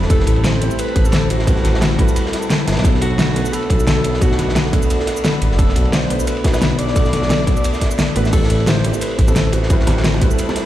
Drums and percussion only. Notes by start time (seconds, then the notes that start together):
0.02 snare
0.10 kick, closed hi-hat, ride, shaker
0.20 snare
0.27 closed hi-hat, ride
0.36 ride
0.44 snare, closed hi-hat, ride, shaker
0.53 snare
0.62 closed hi-hat, ride
0.71 shaker
0.79 closed hi-hat, ride, shaker
0.88 ride
0.96 kick, closed hi-hat, ride
1.05 shaker
1.12 snare, closed hi-hat, ride, shaker
1.30 closed hi-hat, ride
1.39 snare
1.47 kick, closed hi-hat, ride, shaker
1.56 snare
1.65 snare, closed hi-hat, ride
1.74 snare
1.82 snare, closed hi-hat, ride, shaker
1.91 snare
1.99 kick, closed hi-hat, ride
2.08 shaker
2.16 closed hi-hat, ride, shaker
2.26 snare
2.33 snare, closed hi-hat, ride
2.42 shaker
2.50 snare, closed hi-hat, ride, shaker
2.68 snare, closed hi-hat, ride
2.72 snare, ride
2.77 snare, ride
2.84 kick, closed hi-hat, ride, shaker
2.94 snare
3.01 closed hi-hat, ride
3.10 ride
3.19 snare, closed hi-hat, ride, shaker
3.29 snare
3.36 closed hi-hat, ride
3.45 shaker
3.53 closed hi-hat, ride, shaker
3.63 ride
3.70 kick, closed hi-hat, ride
3.80 shaker
3.87 snare, closed hi-hat, ride, shaker
4.04 closed hi-hat, ride
4.14 snare
4.21 kick, closed hi-hat, ride, shaker
4.32 snare
4.39 snare, closed hi-hat, ride
4.49 snare
4.55 snare, closed hi-hat, ride, shaker
4.65 snare
4.73 kick, closed hi-hat, ride
4.82 shaker
4.90 closed hi-hat, ride, shaker
5.00 snare
5.07 snare, closed hi-hat, ride
5.17 shaker
5.25 snare, closed hi-hat, ride, shaker
5.42 closed hi-hat, ride
5.51 snare
5.59 kick, closed hi-hat, ride, shaker
5.68 snare
5.76 closed hi-hat, ride
5.85 ride
5.92 snare, closed hi-hat, ride, shaker
6.02 snare
6.10 closed hi-hat, ride
6.20 shaker
6.27 closed hi-hat, ride, shaker
6.37 ride
6.44 kick, snare, closed hi-hat, ride
6.54 snare, ride, shaker
6.62 snare, closed hi-hat, ride, shaker
6.79 closed hi-hat, ride
6.87 snare
6.96 kick, closed hi-hat, ride, shaker
7.05 snare, shaker
7.13 snare, closed hi-hat, ride
7.22 snare
7.30 snare, closed hi-hat, ride, shaker
7.39 snare
7.47 kick, closed hi-hat, ride, shaker
7.57 shaker
7.64 closed hi-hat, ride, shaker
7.73 snare, shaker
7.81 kick, snare, closed hi-hat, ride
7.91 shaker
7.99 snare, closed hi-hat, ride, shaker
8.16 closed hi-hat, ride
8.25 snare, shaker
8.33 kick, closed hi-hat, crash, ride, high bongo, shaker
8.44 snare
8.50 closed hi-hat, ride
8.60 ride
8.67 snare, closed hi-hat, ride, high bongo, shaker
8.77 snare
8.84 closed hi-hat, ride
8.93 high bongo, shaker
9.01 closed hi-hat, ride, shaker
9.11 ride
9.18 kick, closed hi-hat, ride
9.28 high bongo, shaker
9.36 snare, closed hi-hat, ride, shaker
9.52 closed hi-hat, ride, high bongo
9.63 snare
9.70 kick, closed hi-hat, ride, shaker
9.80 snare
9.87 snare, closed hi-hat, ride, high bongo
9.97 snare
10.04 snare, closed hi-hat, ride, shaker
10.14 snare, high bongo
10.22 kick, closed hi-hat, ride
10.31 shaker
10.39 closed hi-hat, ride, shaker
10.49 snare, high bongo
10.56 snare, closed hi-hat, ride